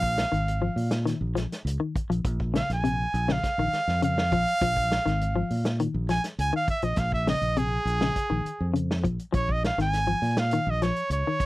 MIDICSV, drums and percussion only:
0, 0, Header, 1, 2, 480
1, 0, Start_track
1, 0, Key_signature, -5, "minor"
1, 0, Tempo, 590551
1, 1827, Time_signature, 4, 2, 24, 8
1, 9312, End_track
2, 0, Start_track
2, 0, Title_t, "Drums"
2, 20, Note_on_c, 9, 36, 70
2, 102, Note_off_c, 9, 36, 0
2, 144, Note_on_c, 9, 42, 53
2, 145, Note_on_c, 9, 38, 74
2, 225, Note_off_c, 9, 42, 0
2, 226, Note_off_c, 9, 38, 0
2, 274, Note_on_c, 9, 42, 50
2, 355, Note_off_c, 9, 42, 0
2, 390, Note_on_c, 9, 42, 71
2, 471, Note_off_c, 9, 42, 0
2, 628, Note_on_c, 9, 46, 67
2, 710, Note_off_c, 9, 46, 0
2, 739, Note_on_c, 9, 38, 74
2, 739, Note_on_c, 9, 42, 58
2, 820, Note_off_c, 9, 42, 0
2, 821, Note_off_c, 9, 38, 0
2, 868, Note_on_c, 9, 38, 29
2, 868, Note_on_c, 9, 42, 73
2, 949, Note_off_c, 9, 42, 0
2, 950, Note_off_c, 9, 38, 0
2, 1108, Note_on_c, 9, 42, 54
2, 1109, Note_on_c, 9, 38, 27
2, 1189, Note_off_c, 9, 42, 0
2, 1190, Note_off_c, 9, 38, 0
2, 1237, Note_on_c, 9, 38, 26
2, 1237, Note_on_c, 9, 42, 51
2, 1318, Note_off_c, 9, 42, 0
2, 1319, Note_off_c, 9, 38, 0
2, 1355, Note_on_c, 9, 42, 72
2, 1436, Note_off_c, 9, 42, 0
2, 1589, Note_on_c, 9, 36, 73
2, 1595, Note_on_c, 9, 42, 56
2, 1670, Note_off_c, 9, 36, 0
2, 1676, Note_off_c, 9, 42, 0
2, 1718, Note_on_c, 9, 42, 54
2, 1799, Note_off_c, 9, 42, 0
2, 1825, Note_on_c, 9, 42, 71
2, 1826, Note_on_c, 9, 36, 91
2, 1906, Note_off_c, 9, 42, 0
2, 1907, Note_off_c, 9, 36, 0
2, 1950, Note_on_c, 9, 36, 71
2, 2031, Note_off_c, 9, 36, 0
2, 2075, Note_on_c, 9, 42, 56
2, 2076, Note_on_c, 9, 38, 73
2, 2156, Note_off_c, 9, 42, 0
2, 2157, Note_off_c, 9, 38, 0
2, 2193, Note_on_c, 9, 42, 52
2, 2194, Note_on_c, 9, 38, 28
2, 2274, Note_off_c, 9, 42, 0
2, 2275, Note_off_c, 9, 38, 0
2, 2314, Note_on_c, 9, 42, 65
2, 2395, Note_off_c, 9, 42, 0
2, 2555, Note_on_c, 9, 42, 50
2, 2636, Note_off_c, 9, 42, 0
2, 2672, Note_on_c, 9, 38, 70
2, 2753, Note_off_c, 9, 38, 0
2, 2792, Note_on_c, 9, 36, 66
2, 2795, Note_on_c, 9, 38, 29
2, 2795, Note_on_c, 9, 42, 61
2, 2873, Note_off_c, 9, 36, 0
2, 2876, Note_off_c, 9, 42, 0
2, 2877, Note_off_c, 9, 38, 0
2, 3033, Note_on_c, 9, 42, 48
2, 3034, Note_on_c, 9, 38, 27
2, 3114, Note_off_c, 9, 42, 0
2, 3115, Note_off_c, 9, 38, 0
2, 3157, Note_on_c, 9, 38, 24
2, 3238, Note_off_c, 9, 38, 0
2, 3269, Note_on_c, 9, 42, 64
2, 3350, Note_off_c, 9, 42, 0
2, 3397, Note_on_c, 9, 38, 71
2, 3478, Note_off_c, 9, 38, 0
2, 3511, Note_on_c, 9, 36, 71
2, 3511, Note_on_c, 9, 42, 49
2, 3592, Note_off_c, 9, 36, 0
2, 3592, Note_off_c, 9, 42, 0
2, 3638, Note_on_c, 9, 42, 53
2, 3719, Note_off_c, 9, 42, 0
2, 3750, Note_on_c, 9, 36, 86
2, 3751, Note_on_c, 9, 42, 69
2, 3832, Note_off_c, 9, 36, 0
2, 3833, Note_off_c, 9, 42, 0
2, 3873, Note_on_c, 9, 36, 66
2, 3954, Note_off_c, 9, 36, 0
2, 3995, Note_on_c, 9, 42, 55
2, 3996, Note_on_c, 9, 38, 72
2, 4076, Note_off_c, 9, 42, 0
2, 4077, Note_off_c, 9, 38, 0
2, 4123, Note_on_c, 9, 42, 47
2, 4124, Note_on_c, 9, 38, 26
2, 4204, Note_off_c, 9, 42, 0
2, 4205, Note_off_c, 9, 38, 0
2, 4238, Note_on_c, 9, 42, 70
2, 4319, Note_off_c, 9, 42, 0
2, 4473, Note_on_c, 9, 46, 66
2, 4555, Note_off_c, 9, 46, 0
2, 4592, Note_on_c, 9, 42, 50
2, 4593, Note_on_c, 9, 38, 73
2, 4674, Note_off_c, 9, 38, 0
2, 4674, Note_off_c, 9, 42, 0
2, 4711, Note_on_c, 9, 42, 71
2, 4792, Note_off_c, 9, 42, 0
2, 4947, Note_on_c, 9, 38, 27
2, 4947, Note_on_c, 9, 42, 51
2, 5028, Note_off_c, 9, 42, 0
2, 5029, Note_off_c, 9, 38, 0
2, 5071, Note_on_c, 9, 42, 55
2, 5072, Note_on_c, 9, 38, 26
2, 5152, Note_off_c, 9, 42, 0
2, 5153, Note_off_c, 9, 38, 0
2, 5191, Note_on_c, 9, 42, 76
2, 5272, Note_off_c, 9, 42, 0
2, 5429, Note_on_c, 9, 36, 72
2, 5429, Note_on_c, 9, 42, 53
2, 5510, Note_off_c, 9, 36, 0
2, 5510, Note_off_c, 9, 42, 0
2, 5544, Note_on_c, 9, 42, 56
2, 5625, Note_off_c, 9, 42, 0
2, 5657, Note_on_c, 9, 42, 72
2, 5658, Note_on_c, 9, 38, 28
2, 5666, Note_on_c, 9, 36, 94
2, 5739, Note_off_c, 9, 38, 0
2, 5739, Note_off_c, 9, 42, 0
2, 5747, Note_off_c, 9, 36, 0
2, 5789, Note_on_c, 9, 36, 71
2, 5870, Note_off_c, 9, 36, 0
2, 5912, Note_on_c, 9, 42, 52
2, 5913, Note_on_c, 9, 38, 76
2, 5994, Note_off_c, 9, 38, 0
2, 5994, Note_off_c, 9, 42, 0
2, 6027, Note_on_c, 9, 42, 51
2, 6109, Note_off_c, 9, 42, 0
2, 6148, Note_on_c, 9, 42, 72
2, 6230, Note_off_c, 9, 42, 0
2, 6398, Note_on_c, 9, 42, 55
2, 6479, Note_off_c, 9, 42, 0
2, 6510, Note_on_c, 9, 38, 72
2, 6592, Note_off_c, 9, 38, 0
2, 6631, Note_on_c, 9, 36, 61
2, 6631, Note_on_c, 9, 42, 72
2, 6712, Note_off_c, 9, 36, 0
2, 6712, Note_off_c, 9, 42, 0
2, 6875, Note_on_c, 9, 42, 55
2, 6957, Note_off_c, 9, 42, 0
2, 7115, Note_on_c, 9, 42, 64
2, 7196, Note_off_c, 9, 42, 0
2, 7240, Note_on_c, 9, 38, 65
2, 7321, Note_off_c, 9, 38, 0
2, 7351, Note_on_c, 9, 36, 73
2, 7354, Note_on_c, 9, 42, 51
2, 7433, Note_off_c, 9, 36, 0
2, 7435, Note_off_c, 9, 42, 0
2, 7473, Note_on_c, 9, 42, 47
2, 7554, Note_off_c, 9, 42, 0
2, 7589, Note_on_c, 9, 42, 65
2, 7590, Note_on_c, 9, 36, 96
2, 7670, Note_off_c, 9, 42, 0
2, 7671, Note_off_c, 9, 36, 0
2, 7713, Note_on_c, 9, 36, 71
2, 7794, Note_off_c, 9, 36, 0
2, 7837, Note_on_c, 9, 42, 49
2, 7838, Note_on_c, 9, 38, 73
2, 7919, Note_off_c, 9, 42, 0
2, 7920, Note_off_c, 9, 38, 0
2, 7961, Note_on_c, 9, 42, 47
2, 7962, Note_on_c, 9, 38, 28
2, 8042, Note_off_c, 9, 42, 0
2, 8043, Note_off_c, 9, 38, 0
2, 8073, Note_on_c, 9, 42, 67
2, 8074, Note_on_c, 9, 38, 29
2, 8154, Note_off_c, 9, 42, 0
2, 8155, Note_off_c, 9, 38, 0
2, 8312, Note_on_c, 9, 46, 63
2, 8393, Note_off_c, 9, 46, 0
2, 8427, Note_on_c, 9, 38, 76
2, 8427, Note_on_c, 9, 42, 52
2, 8508, Note_off_c, 9, 42, 0
2, 8509, Note_off_c, 9, 38, 0
2, 8543, Note_on_c, 9, 42, 70
2, 8624, Note_off_c, 9, 42, 0
2, 8791, Note_on_c, 9, 42, 55
2, 8792, Note_on_c, 9, 38, 28
2, 8873, Note_off_c, 9, 42, 0
2, 8874, Note_off_c, 9, 38, 0
2, 8910, Note_on_c, 9, 42, 45
2, 8992, Note_off_c, 9, 42, 0
2, 9025, Note_on_c, 9, 42, 69
2, 9106, Note_off_c, 9, 42, 0
2, 9266, Note_on_c, 9, 36, 72
2, 9267, Note_on_c, 9, 42, 59
2, 9312, Note_off_c, 9, 36, 0
2, 9312, Note_off_c, 9, 42, 0
2, 9312, End_track
0, 0, End_of_file